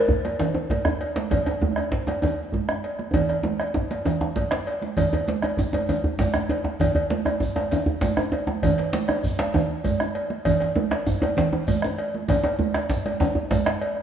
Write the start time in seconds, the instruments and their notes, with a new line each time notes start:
Already playing: balafon A#4
0.08 bombo low, djembe bass
0.25 cowbell, djembe slap, high conga
0.40 cowbell, djembe slap, djembe tone, djembe bass, low conga
0.55 djembe tone, high conga
0.70 bombo low, cowbell, djembe tone, high conga
0.85 bombo rim, djembe slap, djembe tone, djembe bass
1.01 cowbell, high conga
1.16 bombo rim, djembe slap, high conga
1.31 bombo low, cowbell, djembe tone, low conga, djembe bass
1.46 cowbell, djembe slap, djembe tone
1.61 high conga, djembe bass
1.76 bombo rim, cowbell, djembe tone
1.91 bombo low, djembe slap
2.07 cowbell, djembe slap, djembe tone, high conga
2.22 cowbell, djembe tone, djembe bass, low conga
2.39 high conga
2.52 bombo low, high conga
2.68 bombo rim, djembe slap, djembe tone
2.84 cowbell, high conga
2.99 bombo rim, high conga
3.14 bombo low, cowbell, djembe tone, djembe bass, low conga
3.29 bombo rim, cowbell, djembe slap
3.43 djembe tone, high conga
3.60 bombo rim, cowbell, djembe tone, high conga
3.74 bombo rim, bombo low, djembe slap, djembe tone, high conga
3.91 bombo rim, cowbell, djembe slap, high conga
4.05 cowbell, djembe tone, low conga, djembe bass
4.21 bombo rim, djembe tone
4.36 bombo low, cowbell, high conga, djembe bass
4.51 bombo rim, djembe slap, high conga, djembe bass
4.66 cowbell, djembe slap, high conga
4.82 djembe slap, high conga
4.97 bombo low, cowbell, djembe tone, low conga, djembe bass, shekere
5.13 cowbell, djembe slap, djembe bass
5.28 djembe slap, high conga
5.42 bombo rim, cowbell, djembe tone
5.57 bombo low, djembe tone, shekere
5.73 cowbell, djembe slap, djembe tone, high conga
5.89 cowbell, djembe tone, djembe bass, low conga, shekere
6.04 high conga, djembe bass
6.19 bombo low, cowbell, djembe slap, high conga, shekere
6.34 bombo rim, djembe slap, djembe tone
6.49 cowbell, djembe tone, high conga
6.64 djembe tone, high conga
6.80 bombo low, cowbell, djembe tone, low conga, djembe bass, shekere
6.95 cowbell, djembe bass
7.10 djembe slap, high conga
7.25 bombo rim, cowbell, djembe tone
7.27 djembe tone
7.40 bombo low, djembe tone, shekere
7.56 cowbell, djembe slap, high conga, djembe tone
7.71 cowbell, djembe tone, low conga, djembe bass, shekere
7.86 high conga, djembe bass
8.01 bombo low, cowbell, djembe slap, high conga, shekere
8.17 bombo rim, djembe slap, djembe tone
8.19 djembe tone
8.32 cowbell, djembe tone
8.47 bombo rim, djembe tone, high conga
8.62 bombo low, cowbell, djembe tone, low conga, djembe bass, shekere
8.78 cowbell, djembe slap
8.93 djembe slap, high conga
9.08 bombo rim, cowbell, djembe tone
9.24 bombo low, shekere
9.39 cowbell, djembe slap, high conga
9.54 cowbell, djembe tone, low conga, djembe bass, shekere
9.69 high conga
9.84 bombo low, cowbell, high conga, shekere
10.00 bombo rim, djembe slap, djembe tone
10.15 cowbell, high conga
10.30 bombo rim, high conga
10.45 bombo rim, bombo low, cowbell, djembe tone, low conga, djembe bass, shekere
10.60 cowbell, djembe slap
10.76 bombo rim, djembe slap, djembe tone, high conga
10.91 bombo rim, cowbell, djembe slap, high conga, djembe tone
11.07 bombo low, djembe slap, djembe tone, shekere
11.22 cowbell, djembe slap, djembe tone, high conga
11.37 cowbell, djembe slap, djembe tone, low conga, djembe bass
11.53 bombo rim, djembe tone, high conga
11.67 bombo low, cowbell, high conga, shekere
11.82 bombo rim, djembe slap, djembe tone, shekere
11.98 cowbell
12.14 high conga
12.28 bombo low, cowbell, djembe tone, low conga, djembe bass, shekere
12.44 cowbell, djembe slap, djembe tone
12.59 high conga, djembe bass
12.74 bombo rim, cowbell, djembe slap, djembe tone
12.89 bombo low, djembe slap, shekere
13.05 cowbell, djembe slap, high conga
13.20 cowbell, djembe tone, low conga, djembe bass, shekere
13.35 high conga, djembe bass
13.51 bombo low, cowbell, djembe slap, high conga, shekere
13.66 bombo rim, djembe slap, djembe tone
13.81 cowbell, high conga
13.97 bombo rim